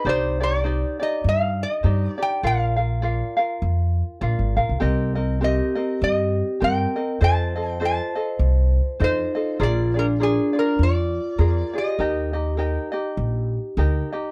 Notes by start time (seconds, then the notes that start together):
0.05 C2 D#4 G4 C5 D5
0.09 C5
0.40 D#4 G4 D5
0.64 D#4 G4 C5 D5
1.00 D#4 G4 D5 D#5
1.24 G2
1.29 F5
1.63 D#5
1.83 G2 D#4 G4 C5 D5
2.06 D5
2.18 D#4 G4 D5
2.22 G5
2.43 A#1 F4 A#4 D5 F5
2.76 F4 A#4 F5
3.02 F4 A#4 D5 F5
3.37 F4 A#4 F5
3.62 F2
4.21 A#1 F4 A#4 D5 F5
4.39 G#1
4.57 A#1 F4 A#4 F5
4.69 C2
4.80 C2 C4 G4 A#4 D#5
5.15 C4 A#4 D#5
5.41 C4 G4 A#4 D#5
5.75 C4 A#4 D#5
6.01 G2 G4 D#5
6.60 G2 C4 G4 A#4 D#5 G5
6.96 C4 A#4 D#5
7.21 F2 F4 A4 C5 D#5 A5
7.56 F4 A4 D#5
7.70 G5
7.80 F4 A4 C5 D#5
7.85 A5
8.15 F4 A4 D#5
8.39 C2
9.00 F2 D#4 F4 A4 C5 D#5
9.04 C5
9.35 F4 A4 D#5
9.60 A#1 F4 G#4 A#4 D5
9.94 D4 F4 G#4 D5
9.99 A#4
10.20 D4 F4 G#4 A#4 D5
10.53 D4 F4 G#4 D5
10.59 A#4
10.79 F2 F4
10.83 D5
11.38 F2 F4 G#4 A#4 D5
11.73 F4 G4 G#4 D5
11.78 D#5
11.99 D#2 D#4 G4 A#4 D#5
12.33 D#4 G4 D#5
12.57 D#4 G4 A#4 D#5
12.92 D#4 G4 D#5
13.17 A#1
13.77 D2 D#4 G4 A#4 D#5
14.12 D#4 G4 D#5